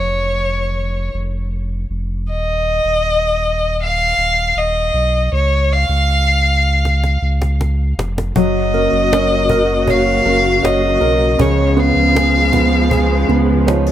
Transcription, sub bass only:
0, 0, Header, 1, 2, 480
1, 0, Start_track
1, 0, Tempo, 759494
1, 1441, Time_signature, 4, 2, 24, 8
1, 8796, End_track
2, 0, Start_track
2, 0, Title_t, "Sub bass"
2, 0, Program_c, 0, 38
2, 0, Note_on_c, 0, 29, 78
2, 694, Note_off_c, 0, 29, 0
2, 720, Note_on_c, 0, 29, 70
2, 1175, Note_off_c, 0, 29, 0
2, 1199, Note_on_c, 0, 29, 71
2, 1438, Note_on_c, 0, 27, 91
2, 1448, Note_off_c, 0, 29, 0
2, 1774, Note_off_c, 0, 27, 0
2, 1798, Note_on_c, 0, 27, 84
2, 2614, Note_off_c, 0, 27, 0
2, 2638, Note_on_c, 0, 27, 76
2, 2863, Note_off_c, 0, 27, 0
2, 2879, Note_on_c, 0, 27, 86
2, 3103, Note_off_c, 0, 27, 0
2, 3120, Note_on_c, 0, 35, 77
2, 3344, Note_off_c, 0, 35, 0
2, 3362, Note_on_c, 0, 37, 89
2, 3697, Note_off_c, 0, 37, 0
2, 3721, Note_on_c, 0, 37, 85
2, 4536, Note_off_c, 0, 37, 0
2, 4562, Note_on_c, 0, 37, 80
2, 5016, Note_off_c, 0, 37, 0
2, 5041, Note_on_c, 0, 29, 81
2, 5264, Note_off_c, 0, 29, 0
2, 5281, Note_on_c, 0, 30, 88
2, 5616, Note_off_c, 0, 30, 0
2, 5638, Note_on_c, 0, 30, 80
2, 6454, Note_off_c, 0, 30, 0
2, 6478, Note_on_c, 0, 30, 78
2, 6703, Note_off_c, 0, 30, 0
2, 6718, Note_on_c, 0, 30, 81
2, 6942, Note_off_c, 0, 30, 0
2, 6957, Note_on_c, 0, 35, 76
2, 7182, Note_off_c, 0, 35, 0
2, 7200, Note_on_c, 0, 37, 89
2, 7535, Note_off_c, 0, 37, 0
2, 7557, Note_on_c, 0, 37, 79
2, 8374, Note_off_c, 0, 37, 0
2, 8397, Note_on_c, 0, 37, 75
2, 8796, Note_off_c, 0, 37, 0
2, 8796, End_track
0, 0, End_of_file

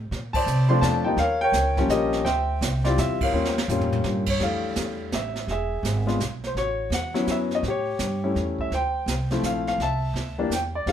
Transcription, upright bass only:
0, 0, Header, 1, 2, 480
1, 0, Start_track
1, 0, Key_signature, -1, "major"
1, 0, Tempo, 358637
1, 149, Time_signature, 3, 2, 24, 8
1, 14619, End_track
2, 0, Start_track
2, 0, Title_t, "Upright bass"
2, 0, Program_c, 0, 32
2, 150, Note_on_c, 0, 46, 75
2, 609, Note_off_c, 0, 46, 0
2, 617, Note_on_c, 0, 48, 98
2, 1082, Note_off_c, 0, 48, 0
2, 1090, Note_on_c, 0, 41, 90
2, 1551, Note_off_c, 0, 41, 0
2, 1559, Note_on_c, 0, 39, 80
2, 2028, Note_off_c, 0, 39, 0
2, 2036, Note_on_c, 0, 37, 88
2, 2504, Note_off_c, 0, 37, 0
2, 2512, Note_on_c, 0, 34, 78
2, 2990, Note_off_c, 0, 34, 0
2, 3015, Note_on_c, 0, 38, 76
2, 3481, Note_off_c, 0, 38, 0
2, 3494, Note_on_c, 0, 36, 93
2, 3960, Note_off_c, 0, 36, 0
2, 3979, Note_on_c, 0, 40, 83
2, 4442, Note_off_c, 0, 40, 0
2, 4455, Note_on_c, 0, 39, 80
2, 4920, Note_off_c, 0, 39, 0
2, 4927, Note_on_c, 0, 41, 93
2, 5395, Note_off_c, 0, 41, 0
2, 5403, Note_on_c, 0, 43, 85
2, 5873, Note_off_c, 0, 43, 0
2, 5888, Note_on_c, 0, 41, 72
2, 6356, Note_off_c, 0, 41, 0
2, 6368, Note_on_c, 0, 40, 80
2, 6836, Note_off_c, 0, 40, 0
2, 6857, Note_on_c, 0, 33, 72
2, 7320, Note_off_c, 0, 33, 0
2, 7326, Note_on_c, 0, 28, 70
2, 7795, Note_off_c, 0, 28, 0
2, 7801, Note_on_c, 0, 32, 86
2, 8273, Note_off_c, 0, 32, 0
2, 8279, Note_on_c, 0, 35, 71
2, 8752, Note_off_c, 0, 35, 0
2, 8760, Note_on_c, 0, 33, 70
2, 9228, Note_off_c, 0, 33, 0
2, 9236, Note_on_c, 0, 40, 86
2, 9712, Note_off_c, 0, 40, 0
2, 9728, Note_on_c, 0, 42, 78
2, 10199, Note_off_c, 0, 42, 0
2, 10207, Note_on_c, 0, 45, 77
2, 10679, Note_off_c, 0, 45, 0
2, 10694, Note_on_c, 0, 43, 87
2, 11163, Note_off_c, 0, 43, 0
2, 11178, Note_on_c, 0, 40, 74
2, 11643, Note_off_c, 0, 40, 0
2, 11651, Note_on_c, 0, 38, 67
2, 12119, Note_off_c, 0, 38, 0
2, 12127, Note_on_c, 0, 36, 79
2, 12603, Note_off_c, 0, 36, 0
2, 12614, Note_on_c, 0, 34, 70
2, 13083, Note_off_c, 0, 34, 0
2, 13091, Note_on_c, 0, 36, 71
2, 13558, Note_off_c, 0, 36, 0
2, 13566, Note_on_c, 0, 38, 88
2, 14044, Note_off_c, 0, 38, 0
2, 14053, Note_on_c, 0, 40, 76
2, 14528, Note_off_c, 0, 40, 0
2, 14539, Note_on_c, 0, 41, 76
2, 14619, Note_off_c, 0, 41, 0
2, 14619, End_track
0, 0, End_of_file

